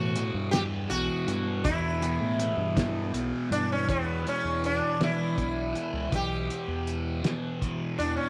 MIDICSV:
0, 0, Header, 1, 5, 480
1, 0, Start_track
1, 0, Tempo, 745342
1, 1064, Time_signature, 6, 3, 24, 8
1, 5340, End_track
2, 0, Start_track
2, 0, Title_t, "Sitar"
2, 0, Program_c, 0, 104
2, 0, Note_on_c, 0, 66, 91
2, 327, Note_off_c, 0, 66, 0
2, 330, Note_on_c, 0, 67, 94
2, 397, Note_off_c, 0, 67, 0
2, 577, Note_on_c, 0, 66, 91
2, 1057, Note_on_c, 0, 64, 78
2, 1075, Note_off_c, 0, 66, 0
2, 1995, Note_off_c, 0, 64, 0
2, 2267, Note_on_c, 0, 62, 73
2, 2389, Note_off_c, 0, 62, 0
2, 2397, Note_on_c, 0, 61, 71
2, 2502, Note_off_c, 0, 61, 0
2, 2509, Note_on_c, 0, 59, 69
2, 2754, Note_off_c, 0, 59, 0
2, 2760, Note_on_c, 0, 61, 70
2, 2998, Note_off_c, 0, 61, 0
2, 3001, Note_on_c, 0, 62, 70
2, 3240, Note_off_c, 0, 62, 0
2, 3242, Note_on_c, 0, 64, 83
2, 3963, Note_on_c, 0, 67, 83
2, 3976, Note_off_c, 0, 64, 0
2, 4469, Note_off_c, 0, 67, 0
2, 5142, Note_on_c, 0, 62, 74
2, 5256, Note_off_c, 0, 62, 0
2, 5258, Note_on_c, 0, 61, 71
2, 5340, Note_off_c, 0, 61, 0
2, 5340, End_track
3, 0, Start_track
3, 0, Title_t, "Distorted electric guitar"
3, 0, Program_c, 1, 30
3, 0, Note_on_c, 1, 40, 62
3, 0, Note_on_c, 1, 47, 72
3, 0, Note_on_c, 1, 52, 76
3, 97, Note_off_c, 1, 40, 0
3, 101, Note_off_c, 1, 47, 0
3, 104, Note_on_c, 1, 40, 60
3, 106, Note_off_c, 1, 52, 0
3, 109, Note_on_c, 1, 47, 68
3, 116, Note_on_c, 1, 52, 73
3, 335, Note_off_c, 1, 52, 0
3, 339, Note_off_c, 1, 47, 0
3, 342, Note_off_c, 1, 40, 0
3, 343, Note_on_c, 1, 52, 77
3, 347, Note_on_c, 1, 47, 68
3, 350, Note_on_c, 1, 40, 58
3, 577, Note_off_c, 1, 40, 0
3, 579, Note_off_c, 1, 47, 0
3, 584, Note_off_c, 1, 52, 0
3, 585, Note_on_c, 1, 40, 70
3, 587, Note_on_c, 1, 47, 79
3, 591, Note_on_c, 1, 52, 77
3, 813, Note_off_c, 1, 52, 0
3, 818, Note_off_c, 1, 47, 0
3, 820, Note_on_c, 1, 52, 81
3, 821, Note_off_c, 1, 40, 0
3, 826, Note_on_c, 1, 47, 71
3, 829, Note_on_c, 1, 40, 66
3, 1054, Note_off_c, 1, 40, 0
3, 1059, Note_off_c, 1, 47, 0
3, 1062, Note_off_c, 1, 52, 0
3, 1062, Note_on_c, 1, 40, 79
3, 1066, Note_on_c, 1, 47, 85
3, 1070, Note_on_c, 1, 52, 97
3, 1291, Note_off_c, 1, 52, 0
3, 1295, Note_off_c, 1, 47, 0
3, 1298, Note_off_c, 1, 40, 0
3, 1299, Note_on_c, 1, 52, 69
3, 1303, Note_on_c, 1, 47, 74
3, 1306, Note_on_c, 1, 40, 59
3, 1532, Note_off_c, 1, 40, 0
3, 1537, Note_off_c, 1, 47, 0
3, 1540, Note_on_c, 1, 40, 68
3, 1542, Note_off_c, 1, 52, 0
3, 1545, Note_on_c, 1, 47, 70
3, 1549, Note_on_c, 1, 52, 78
3, 1770, Note_off_c, 1, 52, 0
3, 1774, Note_off_c, 1, 47, 0
3, 1776, Note_off_c, 1, 40, 0
3, 1778, Note_on_c, 1, 52, 66
3, 1782, Note_on_c, 1, 47, 63
3, 1784, Note_on_c, 1, 40, 58
3, 2008, Note_off_c, 1, 40, 0
3, 2015, Note_off_c, 1, 47, 0
3, 2015, Note_on_c, 1, 40, 63
3, 2017, Note_off_c, 1, 52, 0
3, 2023, Note_on_c, 1, 47, 73
3, 2025, Note_on_c, 1, 52, 77
3, 2250, Note_off_c, 1, 52, 0
3, 2255, Note_off_c, 1, 47, 0
3, 2258, Note_on_c, 1, 52, 67
3, 2260, Note_off_c, 1, 40, 0
3, 2263, Note_on_c, 1, 47, 68
3, 2267, Note_on_c, 1, 40, 55
3, 2484, Note_off_c, 1, 40, 0
3, 2492, Note_off_c, 1, 47, 0
3, 2492, Note_on_c, 1, 40, 73
3, 2498, Note_off_c, 1, 52, 0
3, 2500, Note_on_c, 1, 47, 84
3, 2506, Note_on_c, 1, 52, 96
3, 2729, Note_off_c, 1, 52, 0
3, 2731, Note_on_c, 1, 52, 64
3, 2737, Note_off_c, 1, 47, 0
3, 2745, Note_on_c, 1, 47, 46
3, 3212, Note_off_c, 1, 52, 0
3, 3215, Note_off_c, 1, 47, 0
3, 3215, Note_on_c, 1, 52, 77
3, 3222, Note_on_c, 1, 47, 66
3, 3228, Note_off_c, 1, 40, 0
3, 3231, Note_on_c, 1, 40, 61
3, 3451, Note_off_c, 1, 40, 0
3, 3453, Note_on_c, 1, 40, 62
3, 3457, Note_off_c, 1, 47, 0
3, 3465, Note_on_c, 1, 47, 69
3, 3467, Note_off_c, 1, 52, 0
3, 3469, Note_on_c, 1, 52, 65
3, 3691, Note_off_c, 1, 52, 0
3, 3694, Note_on_c, 1, 52, 61
3, 3702, Note_off_c, 1, 47, 0
3, 3710, Note_on_c, 1, 47, 46
3, 3923, Note_off_c, 1, 40, 0
3, 3925, Note_on_c, 1, 40, 76
3, 3926, Note_off_c, 1, 47, 0
3, 3934, Note_on_c, 1, 47, 88
3, 3943, Note_off_c, 1, 52, 0
3, 3945, Note_on_c, 1, 52, 91
3, 4170, Note_off_c, 1, 52, 0
3, 4173, Note_on_c, 1, 52, 60
3, 4180, Note_off_c, 1, 47, 0
3, 4187, Note_on_c, 1, 47, 51
3, 4651, Note_off_c, 1, 52, 0
3, 4653, Note_on_c, 1, 52, 69
3, 4658, Note_off_c, 1, 47, 0
3, 4666, Note_on_c, 1, 47, 73
3, 4671, Note_off_c, 1, 40, 0
3, 4673, Note_on_c, 1, 40, 62
3, 4898, Note_off_c, 1, 40, 0
3, 4899, Note_off_c, 1, 47, 0
3, 4901, Note_on_c, 1, 40, 71
3, 4906, Note_on_c, 1, 47, 62
3, 4914, Note_off_c, 1, 52, 0
3, 4917, Note_on_c, 1, 52, 73
3, 5138, Note_off_c, 1, 52, 0
3, 5141, Note_on_c, 1, 52, 65
3, 5147, Note_off_c, 1, 47, 0
3, 5155, Note_on_c, 1, 47, 47
3, 5340, Note_off_c, 1, 40, 0
3, 5340, Note_off_c, 1, 47, 0
3, 5340, Note_off_c, 1, 52, 0
3, 5340, End_track
4, 0, Start_track
4, 0, Title_t, "Fingered electric bass"
4, 0, Program_c, 2, 33
4, 0, Note_on_c, 2, 45, 80
4, 208, Note_off_c, 2, 45, 0
4, 219, Note_on_c, 2, 43, 100
4, 561, Note_off_c, 2, 43, 0
4, 582, Note_on_c, 2, 35, 86
4, 696, Note_off_c, 2, 35, 0
4, 819, Note_on_c, 2, 43, 82
4, 1048, Note_off_c, 2, 43, 0
4, 1059, Note_on_c, 2, 40, 93
4, 1401, Note_off_c, 2, 40, 0
4, 1418, Note_on_c, 2, 45, 77
4, 1647, Note_off_c, 2, 45, 0
4, 1656, Note_on_c, 2, 43, 98
4, 1999, Note_off_c, 2, 43, 0
4, 2014, Note_on_c, 2, 35, 83
4, 2132, Note_off_c, 2, 35, 0
4, 2258, Note_on_c, 2, 43, 78
4, 2487, Note_off_c, 2, 43, 0
4, 2504, Note_on_c, 2, 40, 84
4, 2730, Note_off_c, 2, 40, 0
4, 2862, Note_on_c, 2, 40, 78
4, 3089, Note_off_c, 2, 40, 0
4, 3222, Note_on_c, 2, 52, 75
4, 3450, Note_off_c, 2, 52, 0
4, 3462, Note_on_c, 2, 35, 79
4, 3690, Note_off_c, 2, 35, 0
4, 3819, Note_on_c, 2, 37, 79
4, 3935, Note_off_c, 2, 37, 0
4, 3944, Note_on_c, 2, 35, 82
4, 4171, Note_off_c, 2, 35, 0
4, 4301, Note_on_c, 2, 40, 69
4, 4643, Note_off_c, 2, 40, 0
4, 4663, Note_on_c, 2, 52, 85
4, 4891, Note_off_c, 2, 52, 0
4, 5146, Note_on_c, 2, 40, 79
4, 5260, Note_off_c, 2, 40, 0
4, 5340, End_track
5, 0, Start_track
5, 0, Title_t, "Drums"
5, 100, Note_on_c, 9, 42, 65
5, 164, Note_off_c, 9, 42, 0
5, 341, Note_on_c, 9, 42, 89
5, 345, Note_on_c, 9, 38, 108
5, 406, Note_off_c, 9, 42, 0
5, 409, Note_off_c, 9, 38, 0
5, 583, Note_on_c, 9, 42, 65
5, 648, Note_off_c, 9, 42, 0
5, 824, Note_on_c, 9, 42, 72
5, 889, Note_off_c, 9, 42, 0
5, 1062, Note_on_c, 9, 36, 108
5, 1064, Note_on_c, 9, 42, 92
5, 1126, Note_off_c, 9, 36, 0
5, 1128, Note_off_c, 9, 42, 0
5, 1304, Note_on_c, 9, 42, 68
5, 1368, Note_off_c, 9, 42, 0
5, 1543, Note_on_c, 9, 42, 68
5, 1607, Note_off_c, 9, 42, 0
5, 1782, Note_on_c, 9, 36, 80
5, 1784, Note_on_c, 9, 42, 95
5, 1787, Note_on_c, 9, 38, 111
5, 1846, Note_off_c, 9, 36, 0
5, 1848, Note_off_c, 9, 42, 0
5, 1851, Note_off_c, 9, 38, 0
5, 2024, Note_on_c, 9, 42, 63
5, 2088, Note_off_c, 9, 42, 0
5, 2268, Note_on_c, 9, 42, 67
5, 2332, Note_off_c, 9, 42, 0
5, 2503, Note_on_c, 9, 36, 92
5, 2506, Note_on_c, 9, 42, 66
5, 2567, Note_off_c, 9, 36, 0
5, 2570, Note_off_c, 9, 42, 0
5, 2749, Note_on_c, 9, 42, 49
5, 2813, Note_off_c, 9, 42, 0
5, 2988, Note_on_c, 9, 42, 49
5, 3052, Note_off_c, 9, 42, 0
5, 3225, Note_on_c, 9, 42, 70
5, 3228, Note_on_c, 9, 38, 99
5, 3289, Note_off_c, 9, 42, 0
5, 3292, Note_off_c, 9, 38, 0
5, 3463, Note_on_c, 9, 36, 61
5, 3465, Note_on_c, 9, 42, 45
5, 3527, Note_off_c, 9, 36, 0
5, 3530, Note_off_c, 9, 42, 0
5, 3706, Note_on_c, 9, 42, 54
5, 3770, Note_off_c, 9, 42, 0
5, 3943, Note_on_c, 9, 36, 97
5, 3944, Note_on_c, 9, 42, 71
5, 4008, Note_off_c, 9, 36, 0
5, 4008, Note_off_c, 9, 42, 0
5, 4188, Note_on_c, 9, 42, 56
5, 4253, Note_off_c, 9, 42, 0
5, 4426, Note_on_c, 9, 42, 57
5, 4490, Note_off_c, 9, 42, 0
5, 4665, Note_on_c, 9, 42, 76
5, 4668, Note_on_c, 9, 38, 101
5, 4729, Note_off_c, 9, 42, 0
5, 4732, Note_off_c, 9, 38, 0
5, 4907, Note_on_c, 9, 36, 64
5, 4908, Note_on_c, 9, 42, 56
5, 4971, Note_off_c, 9, 36, 0
5, 4973, Note_off_c, 9, 42, 0
5, 5150, Note_on_c, 9, 42, 58
5, 5215, Note_off_c, 9, 42, 0
5, 5340, End_track
0, 0, End_of_file